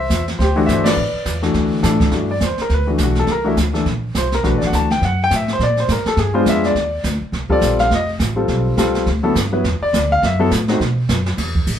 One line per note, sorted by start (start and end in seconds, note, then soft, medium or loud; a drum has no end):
0.00 0.25 C5 medium
0.00 0.23 E5 loud
0.10 0.38 E2 medium
0.10 kick soft
0.10 snare medium
0.10 hi-hat pedal medium
0.28 snare soft
0.39 0.67 D2 medium
0.39 0.67 G4 medium
0.39 0.66 C5 medium
0.39 brush sweep soft
0.39 kick soft
0.39 snare soft
0.56 0.94 E3 medium
0.56 0.94 A3 medium
0.56 0.94 D4 medium
0.56 0.95 F#4 medium
0.66 0.96 G1 medium
0.66 0.85 E5 loud
0.66 kick soft
0.66 snare medium
0.66 hi-hat pedal medium
0.71 0.86 C5 medium
0.84 1.40 B4 medium
0.84 1.38 D5 medium
0.84 snare medium
0.84 ride medium
0.97 1.13 A1 medium
0.97 brush sweep medium
1.14 muted upright bass stroke soft
1.25 1.53 E2 medium
1.25 kick soft
1.25 snare medium
1.25 hi-hat pedal medium
1.42 1.81 E3 medium
1.42 1.81 A3 medium
1.42 1.81 D4 medium
1.42 1.81 F#4 medium
1.42 snare soft
1.54 1.82 D2 medium
1.54 brush sweep soft
1.54 kick soft
1.54 snare soft
1.82 2.11 A2 medium
1.82 2.10 E3 medium
1.82 2.11 A3 medium
1.82 2.11 D4 medium
1.82 2.12 A4 medium
1.82 kick soft
1.82 snare medium
1.82 hi-hat pedal medium
2.00 kick medium
2.00 snare soft
2.11 2.40 G2 medium
2.11 2.27 E3 medium
2.11 2.28 A3 medium
2.11 2.28 D4 soft
2.11 2.28 F#4 medium
2.11 brush sweep soft
2.11 kick soft
2.11 snare soft
2.31 2.41 D5 medium
2.40 2.57 E2 medium
2.40 kick soft
2.40 snare medium
2.40 hi-hat pedal medium
2.45 2.60 C5 medium
2.58 2.71 A#4 medium
2.58 muted upright bass stroke soft
2.58 snare soft
2.69 2.98 D2 medium
2.69 brush sweep medium
2.69 kick soft
2.69 snare soft
2.74 2.89 B4 medium
2.87 3.25 E3 medium
2.87 3.26 A3 medium
2.87 3.26 D4 medium
2.87 3.02 F#4 medium
2.98 3.27 B1 medium
2.98 kick soft
2.98 snare medium
2.98 hi-hat pedal medium
3.03 3.18 F#4 medium
3.15 snare soft
3.19 3.29 A4 medium
3.27 3.56 C2 medium
3.27 brush sweep soft
3.27 kick soft
3.27 snare soft
3.32 3.46 A#4 medium
3.44 3.55 E3 medium
3.44 3.55 A3 medium
3.44 3.55 D4 medium
3.44 3.54 E4 medium
3.44 3.56 F#4 medium
3.57 3.85 D2 medium
3.57 kick soft
3.57 snare medium
3.57 hi-hat pedal medium
3.73 3.84 E3 medium
3.73 3.85 A3 medium
3.73 3.85 D4 medium
3.73 3.85 A4 medium
3.73 snare soft
3.85 4.14 A#1 medium
3.85 brush sweep soft
3.85 kick soft
3.85 snare soft
4.15 4.43 C2 medium
4.15 4.33 C5 medium
4.15 kick soft
4.15 snare medium
4.15 hi-hat pedal medium
4.32 4.45 A#4 medium
4.32 snare soft
4.43 4.54 B1 medium
4.43 4.86 E3 medium
4.43 4.86 A3 medium
4.43 4.86 D4 medium
4.43 4.86 F#4 medium
4.43 4.55 B4 medium
4.43 brush sweep soft
4.43 kick soft
4.43 snare soft
4.54 4.63 A1 medium
4.58 4.65 D5 medium
4.58 snare soft
4.64 4.72 F#1 medium
4.64 4.74 F#5 medium
4.73 5.01 D2 medium
4.73 4.90 A5 medium
4.73 kick soft
4.73 snare medium
4.73 hi-hat pedal medium
4.90 5.02 G5 medium
4.90 snare soft
5.01 5.29 F#2 medium
5.01 5.20 F#5 medium
5.01 brush sweep soft
5.01 kick soft
5.01 snare soft
5.24 5.33 G5 loud
5.31 5.58 A2 medium
5.31 kick soft
5.31 snare medium
5.31 hi-hat pedal medium
5.36 5.50 E5 medium
5.48 snare soft
5.53 5.62 C5 medium
5.59 5.87 A#2 medium
5.59 brush sweep medium
5.59 kick soft
5.59 snare soft
5.63 5.78 D5 medium
5.77 5.90 C5 medium
5.77 snare soft
5.88 6.04 G#2 medium
5.88 6.07 A#4 medium
5.88 kick soft
5.88 snare medium
5.88 hi-hat pedal medium
6.05 6.18 A4 medium
6.05 muted upright bass stroke soft
6.05 snare soft
6.17 6.45 G2 medium
6.17 6.35 G#4 medium
6.17 brush sweep medium
6.17 kick soft
6.17 snare soft
6.34 6.72 G#3 medium
6.34 6.73 B3 medium
6.34 6.73 D4 medium
6.34 6.73 F4 medium
6.34 6.46 C5 medium
6.46 6.74 F2 medium
6.46 6.64 E5 loud
6.46 kick soft
6.46 snare medium
6.46 hi-hat pedal medium
6.64 7.03 D5 medium
6.64 snare soft
6.75 7.03 D#2 medium
6.75 brush sweep medium
6.75 kick soft
6.75 snare soft
7.04 7.20 D2 medium
7.04 kick soft
7.04 snare medium
7.04 hi-hat pedal medium
7.21 muted upright bass stroke soft
7.32 7.49 C2 medium
7.32 brush sweep soft
7.32 kick soft
7.32 snare soft
7.49 7.88 G3 medium
7.49 7.88 C4 medium
7.49 7.88 F4 medium
7.49 7.88 A4 medium
7.49 7.78 D5 loud
7.49 muted upright bass stroke soft
7.49 kick soft
7.61 7.89 A#1 medium
7.61 kick soft
7.61 snare medium
7.61 hi-hat pedal medium
7.79 7.91 F5 loud
7.79 snare soft
7.90 8.19 F1 medium
7.90 brush sweep soft
7.90 kick soft
7.90 snare soft
7.95 8.09 D#5 medium
8.19 8.48 A1 medium
8.19 kick soft
8.19 snare medium
8.19 hi-hat pedal medium
8.36 8.75 G3 medium
8.36 8.75 C4 medium
8.36 8.75 F4 medium
8.36 8.75 A4 medium
8.48 8.77 B1 medium
8.48 brush sweep soft
8.48 kick soft
8.48 snare soft
8.77 9.05 C2 medium
8.77 9.07 G3 medium
8.77 9.07 C4 medium
8.77 9.07 F4 medium
8.77 9.07 A4 medium
8.77 kick soft
8.77 snare medium
8.77 hi-hat pedal medium
8.95 snare soft
9.06 9.35 D2 medium
9.06 brush sweep soft
9.06 kick soft
9.06 snare soft
9.23 9.34 F#3 medium
9.23 9.34 B3 medium
9.23 9.34 E4 medium
9.23 9.34 A4 medium
9.35 9.63 G2 loud
9.35 kick soft
9.35 snare medium
9.35 hi-hat pedal medium
9.53 9.63 F#3 medium
9.53 9.63 B3 medium
9.53 9.63 E4 medium
9.53 9.63 B4 medium
9.64 9.80 E2 medium
9.64 brush sweep soft
9.64 kick soft
9.64 snare medium
9.81 10.09 D5 medium
9.81 muted upright bass stroke soft
9.93 10.21 D2 loud
9.93 kick soft
9.93 snare medium
9.93 hi-hat pedal medium
10.12 10.23 F5 loud
10.22 10.50 F#2 medium
10.22 10.40 E5 medium
10.22 brush sweep soft
10.22 kick soft
10.22 snare soft
10.39 10.50 F#3 medium
10.39 10.50 B3 medium
10.39 10.50 E4 medium
10.39 10.50 A4 loud
10.51 10.79 A2 medium
10.51 kick soft
10.51 snare medium
10.51 hi-hat pedal medium
10.68 10.79 A3 medium
10.68 10.79 C4 medium
10.68 10.79 D#4 medium
10.68 10.79 F#4 medium
10.68 snare soft
10.80 11.08 B2 medium
10.80 brush sweep medium
10.80 kick soft
10.80 snare soft
11.09 11.37 F#2 medium
11.09 kick soft
11.09 snare medium
11.09 hi-hat pedal medium
11.26 snare medium
11.37 11.66 E2 medium
11.37 kick soft
11.37 snare soft
11.37 ride medium
11.55 kick medium
11.67 11.79 A1 medium
11.67 kick soft
11.67 hi-hat pedal medium
11.67 ride medium